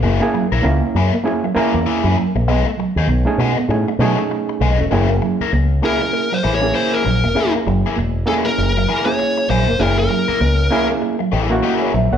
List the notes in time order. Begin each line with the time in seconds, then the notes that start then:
0.03 F#1 A#3 E4 G#4
0.20 A#3 C#4 E4 G#4, muted overdriven electric guitar stroke
0.34 F#3, muted overdriven electric guitar stroke
0.52 A#1 A#3 E4 A#4
0.62 C#2 A#3 C#4 E4 A#4, muted overdriven electric guitar stroke
0.95 F#2 A#3 E4 G#4, muted clean electric guitar stroke
1.13 A#3, muted overdriven electric guitar stroke
1.24 A#3 C#4 E4 G#4, muted clean electric guitar stroke, muted overdriven electric guitar stroke
1.43 F#3, muted overdriven electric guitar stroke
1.55 E3 A#3 C#4 E4 G#4 A#4, muted fingered electric bass stroke
1.74 E2, muted overdriven electric guitar stroke
1.86 A#3 E4 G#4, muted clean electric guitar stroke
2.04 F#2
2.16 F#3, muted overdriven electric guitar stroke
2.35 A#1 A#3, muted overdriven electric guitar stroke
2.47 B1 A3 B3 D#4 G#4
2.67 muted overdriven electric guitar stroke
2.77 F#3, muted overdriven electric guitar stroke
2.95 D#2 A3 D#4 G#4, muted clean electric guitar stroke
3.07 B1 B3, muted overdriven electric guitar stroke
3.25 A3 C#4 D#4 G#4
3.38 B2 A3 D#4 G#4, muted clean electric guitar stroke
3.57 B3, muted overdriven electric guitar stroke
3.69 A2 A3 C#4 D#4 G#4, muted overdriven electric guitar stroke
3.88 A3, muted overdriven electric guitar stroke
3.99 B2 F#3 A3 C#4 D#4 G#4
4.19 muted overdriven electric guitar stroke
4.30 muted clean electric guitar stroke, muted overdriven electric guitar stroke
4.49 muted overdriven electric guitar stroke
4.60 B1 A3 D#4 G#4
4.78 E1 C#4, muted overdriven electric guitar stroke
4.91 F#1 A#3 C#4 E4 G#4
5.10 muted overdriven electric guitar stroke
5.22 F#3, muted overdriven electric guitar stroke
5.40 A#3 E4 A#4, muted clean electric guitar stroke, muted fingered electric bass stroke
5.52 C#2 A#3, muted overdriven electric guitar stroke
5.82 A#3 C#4 E4 G#4 A#4, muted clean electric guitar stroke
6.01 A#3, muted overdriven electric guitar stroke
6.13 muted overdriven electric guitar stroke, muted clean electric guitar stroke
6.32 F#3 C5, muted overdriven electric guitar stroke
6.43 A1 E3 A#3 E4 G#4
6.55 C#5
6.61 A#3 C#4 E4 G#4, muted overdriven electric guitar stroke
6.74 A#3 E4 G#4 C5, muted clean electric guitar stroke
6.94 A#4
7.04 A#1 F#3, muted overdriven electric guitar stroke
7.23 E1 A#3, muted overdriven electric guitar stroke
7.34 A#3 C#4 E4 G#4
7.55 muted overdriven electric guitar stroke
7.66 F#1 F#3, muted overdriven electric guitar stroke
7.84 A#3 E4 G#4, muted clean electric guitar stroke
7.96 E1 A#3, muted overdriven electric guitar stroke
8.26 A#3 C#4 E4 G#4 A4, muted clean electric guitar stroke
8.30 G#4
8.45 A#3 A#4, muted overdriven electric guitar stroke
8.58 F#1, muted overdriven electric guitar stroke
8.76 F#3, muted overdriven electric guitar stroke
8.88 E3 A#3 E4 G#4
9.05 A#3 C#4 E4 G#4 C#5, muted overdriven electric guitar stroke
9.19 muted clean electric guitar stroke, muted overdriven electric guitar stroke
9.38 muted overdriven electric guitar stroke
9.49 A#1 F#3 A#3 E4 G#4 C5
9.67 E1 A#3, muted overdriven electric guitar stroke
9.79 F#1 A#3 C#4 E4 G#4 A#4
9.98 A#4, muted overdriven electric guitar stroke
10.10 F#3, muted overdriven electric guitar stroke
10.28 A#3 E4 A#4, muted fingered electric bass stroke
10.40 C#2 A#3, muted overdriven electric guitar stroke
10.70 A#3 C#4 E4 G#4
10.89 A#3, muted overdriven electric guitar stroke
11.02 muted overdriven electric guitar stroke, muted clean electric guitar stroke
11.19 F#3, muted overdriven electric guitar stroke
11.32 A1 E3 A#3 E4 G#4
11.50 A#3 C#4 E4 F#4, muted overdriven electric guitar stroke
11.63 A3 D#4 G4, muted clean electric guitar stroke
11.75 A#3 E4 G#4
11.82 G#4 C#5
11.93 A#1 F#3 A#4 E5, muted overdriven electric guitar stroke
12.11 A#1 A#3 C#5 F#5, muted overdriven electric guitar stroke